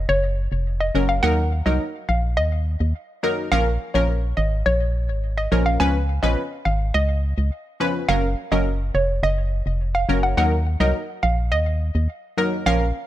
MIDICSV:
0, 0, Header, 1, 4, 480
1, 0, Start_track
1, 0, Tempo, 571429
1, 1036, Time_signature, 4, 2, 24, 8
1, 10977, End_track
2, 0, Start_track
2, 0, Title_t, "Synth pluck"
2, 0, Program_c, 0, 84
2, 75, Note_on_c, 0, 73, 102
2, 413, Note_off_c, 0, 73, 0
2, 676, Note_on_c, 0, 75, 85
2, 771, Note_off_c, 0, 75, 0
2, 914, Note_on_c, 0, 77, 84
2, 1010, Note_off_c, 0, 77, 0
2, 1031, Note_on_c, 0, 78, 104
2, 1128, Note_off_c, 0, 78, 0
2, 1393, Note_on_c, 0, 75, 75
2, 1489, Note_off_c, 0, 75, 0
2, 1753, Note_on_c, 0, 77, 86
2, 1849, Note_off_c, 0, 77, 0
2, 1991, Note_on_c, 0, 75, 102
2, 2331, Note_off_c, 0, 75, 0
2, 2953, Note_on_c, 0, 77, 109
2, 3050, Note_off_c, 0, 77, 0
2, 3311, Note_on_c, 0, 73, 76
2, 3408, Note_off_c, 0, 73, 0
2, 3670, Note_on_c, 0, 75, 81
2, 3768, Note_off_c, 0, 75, 0
2, 3913, Note_on_c, 0, 73, 100
2, 4253, Note_off_c, 0, 73, 0
2, 4515, Note_on_c, 0, 75, 84
2, 4611, Note_off_c, 0, 75, 0
2, 4753, Note_on_c, 0, 77, 82
2, 4849, Note_off_c, 0, 77, 0
2, 4871, Note_on_c, 0, 80, 100
2, 4968, Note_off_c, 0, 80, 0
2, 5230, Note_on_c, 0, 75, 82
2, 5328, Note_off_c, 0, 75, 0
2, 5589, Note_on_c, 0, 77, 86
2, 5687, Note_off_c, 0, 77, 0
2, 5832, Note_on_c, 0, 75, 100
2, 6172, Note_off_c, 0, 75, 0
2, 6792, Note_on_c, 0, 77, 108
2, 6889, Note_off_c, 0, 77, 0
2, 7154, Note_on_c, 0, 75, 81
2, 7250, Note_off_c, 0, 75, 0
2, 7515, Note_on_c, 0, 73, 82
2, 7610, Note_off_c, 0, 73, 0
2, 7756, Note_on_c, 0, 75, 108
2, 8094, Note_off_c, 0, 75, 0
2, 8356, Note_on_c, 0, 77, 84
2, 8451, Note_off_c, 0, 77, 0
2, 8595, Note_on_c, 0, 78, 79
2, 8690, Note_off_c, 0, 78, 0
2, 8716, Note_on_c, 0, 78, 102
2, 8811, Note_off_c, 0, 78, 0
2, 9075, Note_on_c, 0, 75, 78
2, 9171, Note_off_c, 0, 75, 0
2, 9432, Note_on_c, 0, 77, 82
2, 9529, Note_off_c, 0, 77, 0
2, 9674, Note_on_c, 0, 75, 99
2, 10013, Note_off_c, 0, 75, 0
2, 10637, Note_on_c, 0, 77, 108
2, 10732, Note_off_c, 0, 77, 0
2, 10977, End_track
3, 0, Start_track
3, 0, Title_t, "Synth stab"
3, 0, Program_c, 1, 62
3, 795, Note_on_c, 1, 54, 76
3, 798, Note_on_c, 1, 61, 70
3, 800, Note_on_c, 1, 70, 84
3, 1016, Note_off_c, 1, 54, 0
3, 1017, Note_off_c, 1, 61, 0
3, 1019, Note_off_c, 1, 70, 0
3, 1033, Note_on_c, 1, 54, 92
3, 1037, Note_on_c, 1, 63, 86
3, 1038, Note_on_c, 1, 70, 104
3, 1175, Note_off_c, 1, 54, 0
3, 1177, Note_off_c, 1, 63, 0
3, 1178, Note_off_c, 1, 70, 0
3, 1394, Note_on_c, 1, 54, 80
3, 1397, Note_on_c, 1, 63, 70
3, 1399, Note_on_c, 1, 70, 87
3, 1536, Note_off_c, 1, 54, 0
3, 1537, Note_off_c, 1, 63, 0
3, 1538, Note_off_c, 1, 70, 0
3, 2714, Note_on_c, 1, 54, 81
3, 2716, Note_on_c, 1, 63, 73
3, 2718, Note_on_c, 1, 70, 86
3, 2935, Note_off_c, 1, 54, 0
3, 2936, Note_off_c, 1, 63, 0
3, 2937, Note_off_c, 1, 70, 0
3, 2955, Note_on_c, 1, 53, 94
3, 2957, Note_on_c, 1, 61, 87
3, 2960, Note_on_c, 1, 70, 102
3, 3096, Note_off_c, 1, 53, 0
3, 3097, Note_off_c, 1, 61, 0
3, 3099, Note_off_c, 1, 70, 0
3, 3314, Note_on_c, 1, 53, 80
3, 3316, Note_on_c, 1, 61, 72
3, 3320, Note_on_c, 1, 70, 84
3, 3456, Note_off_c, 1, 53, 0
3, 3457, Note_off_c, 1, 61, 0
3, 3458, Note_off_c, 1, 70, 0
3, 4633, Note_on_c, 1, 53, 76
3, 4635, Note_on_c, 1, 61, 69
3, 4638, Note_on_c, 1, 70, 88
3, 4855, Note_off_c, 1, 53, 0
3, 4856, Note_off_c, 1, 61, 0
3, 4857, Note_off_c, 1, 70, 0
3, 4871, Note_on_c, 1, 53, 95
3, 4873, Note_on_c, 1, 61, 88
3, 4875, Note_on_c, 1, 71, 102
3, 5014, Note_off_c, 1, 53, 0
3, 5015, Note_off_c, 1, 61, 0
3, 5016, Note_off_c, 1, 71, 0
3, 5233, Note_on_c, 1, 53, 80
3, 5235, Note_on_c, 1, 61, 76
3, 5237, Note_on_c, 1, 71, 89
3, 5375, Note_off_c, 1, 53, 0
3, 5376, Note_off_c, 1, 61, 0
3, 5377, Note_off_c, 1, 71, 0
3, 6552, Note_on_c, 1, 53, 75
3, 6555, Note_on_c, 1, 61, 71
3, 6558, Note_on_c, 1, 71, 86
3, 6775, Note_off_c, 1, 53, 0
3, 6776, Note_off_c, 1, 61, 0
3, 6777, Note_off_c, 1, 71, 0
3, 6793, Note_on_c, 1, 54, 96
3, 6794, Note_on_c, 1, 61, 86
3, 6797, Note_on_c, 1, 70, 104
3, 6935, Note_off_c, 1, 54, 0
3, 6936, Note_off_c, 1, 61, 0
3, 6937, Note_off_c, 1, 70, 0
3, 7154, Note_on_c, 1, 54, 82
3, 7155, Note_on_c, 1, 61, 74
3, 7158, Note_on_c, 1, 70, 89
3, 7295, Note_off_c, 1, 54, 0
3, 7296, Note_off_c, 1, 61, 0
3, 7297, Note_off_c, 1, 70, 0
3, 8473, Note_on_c, 1, 54, 78
3, 8476, Note_on_c, 1, 61, 74
3, 8478, Note_on_c, 1, 70, 86
3, 8695, Note_off_c, 1, 54, 0
3, 8696, Note_off_c, 1, 61, 0
3, 8698, Note_off_c, 1, 70, 0
3, 8713, Note_on_c, 1, 54, 96
3, 8717, Note_on_c, 1, 63, 85
3, 8719, Note_on_c, 1, 70, 98
3, 8855, Note_off_c, 1, 54, 0
3, 8857, Note_off_c, 1, 63, 0
3, 8858, Note_off_c, 1, 70, 0
3, 9072, Note_on_c, 1, 54, 77
3, 9075, Note_on_c, 1, 63, 75
3, 9077, Note_on_c, 1, 70, 92
3, 9215, Note_off_c, 1, 54, 0
3, 9216, Note_off_c, 1, 63, 0
3, 9217, Note_off_c, 1, 70, 0
3, 10394, Note_on_c, 1, 54, 75
3, 10396, Note_on_c, 1, 63, 69
3, 10399, Note_on_c, 1, 70, 88
3, 10616, Note_off_c, 1, 54, 0
3, 10617, Note_off_c, 1, 63, 0
3, 10618, Note_off_c, 1, 70, 0
3, 10635, Note_on_c, 1, 53, 89
3, 10638, Note_on_c, 1, 61, 85
3, 10640, Note_on_c, 1, 70, 104
3, 10776, Note_off_c, 1, 53, 0
3, 10778, Note_off_c, 1, 61, 0
3, 10779, Note_off_c, 1, 70, 0
3, 10977, End_track
4, 0, Start_track
4, 0, Title_t, "FM bass"
4, 0, Program_c, 2, 39
4, 75, Note_on_c, 2, 30, 120
4, 403, Note_off_c, 2, 30, 0
4, 435, Note_on_c, 2, 29, 93
4, 763, Note_off_c, 2, 29, 0
4, 796, Note_on_c, 2, 30, 93
4, 1014, Note_off_c, 2, 30, 0
4, 1034, Note_on_c, 2, 39, 106
4, 1363, Note_off_c, 2, 39, 0
4, 1395, Note_on_c, 2, 36, 95
4, 1505, Note_off_c, 2, 36, 0
4, 1755, Note_on_c, 2, 34, 96
4, 1996, Note_on_c, 2, 39, 106
4, 2008, Note_off_c, 2, 34, 0
4, 2324, Note_off_c, 2, 39, 0
4, 2356, Note_on_c, 2, 39, 91
4, 2465, Note_off_c, 2, 39, 0
4, 2956, Note_on_c, 2, 34, 111
4, 3175, Note_off_c, 2, 34, 0
4, 3316, Note_on_c, 2, 34, 91
4, 3644, Note_off_c, 2, 34, 0
4, 3676, Note_on_c, 2, 32, 98
4, 3894, Note_off_c, 2, 32, 0
4, 3916, Note_on_c, 2, 34, 103
4, 4277, Note_on_c, 2, 32, 94
4, 4289, Note_off_c, 2, 34, 0
4, 4604, Note_off_c, 2, 32, 0
4, 4636, Note_on_c, 2, 34, 96
4, 4855, Note_off_c, 2, 34, 0
4, 4876, Note_on_c, 2, 37, 115
4, 5204, Note_off_c, 2, 37, 0
4, 5234, Note_on_c, 2, 34, 95
4, 5344, Note_off_c, 2, 34, 0
4, 5593, Note_on_c, 2, 32, 103
4, 5813, Note_off_c, 2, 32, 0
4, 5835, Note_on_c, 2, 37, 109
4, 6164, Note_off_c, 2, 37, 0
4, 6197, Note_on_c, 2, 37, 92
4, 6306, Note_off_c, 2, 37, 0
4, 6794, Note_on_c, 2, 30, 111
4, 7014, Note_off_c, 2, 30, 0
4, 7154, Note_on_c, 2, 30, 88
4, 7483, Note_off_c, 2, 30, 0
4, 7514, Note_on_c, 2, 29, 99
4, 7734, Note_off_c, 2, 29, 0
4, 7753, Note_on_c, 2, 30, 120
4, 8082, Note_off_c, 2, 30, 0
4, 8114, Note_on_c, 2, 29, 93
4, 8443, Note_off_c, 2, 29, 0
4, 8474, Note_on_c, 2, 30, 94
4, 8693, Note_off_c, 2, 30, 0
4, 8714, Note_on_c, 2, 39, 114
4, 9043, Note_off_c, 2, 39, 0
4, 9075, Note_on_c, 2, 36, 98
4, 9185, Note_off_c, 2, 36, 0
4, 9436, Note_on_c, 2, 34, 96
4, 9676, Note_on_c, 2, 39, 105
4, 9688, Note_off_c, 2, 34, 0
4, 10004, Note_off_c, 2, 39, 0
4, 10038, Note_on_c, 2, 39, 94
4, 10146, Note_off_c, 2, 39, 0
4, 10637, Note_on_c, 2, 34, 107
4, 10855, Note_off_c, 2, 34, 0
4, 10977, End_track
0, 0, End_of_file